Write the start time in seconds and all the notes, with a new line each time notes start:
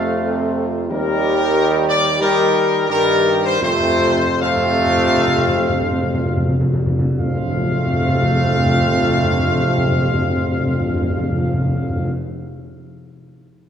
Already playing: F2 C3 A3 C4 F4 F5
0.26 C3
0.89 D#2 D#3 G3 G4 A#4
1.86 D5
2.20 D#3 G3 G4 A#4
2.88 G2 D#3 G3 G4 A#4
3.44 C5
3.61 F2 C3 A3 C4 F4 C5
3.70 F2
3.79 F2
3.89 F2
3.98 F2
4.08 F2
4.17 F2
4.27 F2
4.37 F2 F5
4.41 C3 A3 C4 F4
4.46 F2
4.57 F2
4.66 F2
4.77 F2
4.86 F2
4.96 F2
5.06 F2
5.17 F2
5.27 F2
5.38 F2
5.48 F2
5.59 F2
5.69 F2
5.80 F2
5.92 F2
6.03 F2
6.14 F2
6.25 F2
6.37 F2
6.49 F2
6.61 F2
6.74 F2
6.86 F2
6.99 F2
7.19 F2 C3 A3 C4 F4 F5
7.27 F2
7.34 F2
7.42 F2
7.49 F2
7.56 F2
7.64 F2
7.71 F2
7.79 F2
7.86 F2
7.93 F2
8.01 F2
8.08 F2
8.15 F2
8.22 F2
8.30 F2
8.37 F2
8.44 F2
8.52 F2
8.59 F2
8.66 F2
8.73 F2
8.81 F2
8.88 F2
8.95 F2
9.03 F2
9.10 F2
9.17 F2
9.24 F2
9.31 F2
9.39 F2
9.47 F2
9.55 F2
9.62 F2
9.70 F2
9.77 F2
9.85 F2
9.92 F2
9.99 F2
10.07 F2
10.14 F2
10.22 F2
10.29 F2
10.37 F2
10.44 F2
10.52 F2
10.60 F2
10.67 F2
10.74 F2
10.81 F2
10.88 F2
10.95 F2
11.02 F2
11.10 F2
11.17 F2
11.24 F2
11.32 F2
11.39 F2
11.46 F2
11.53 F2
11.61 F2
11.68 F2
11.75 F2
11.83 F2
11.90 F2
11.96 F2
12.04 F2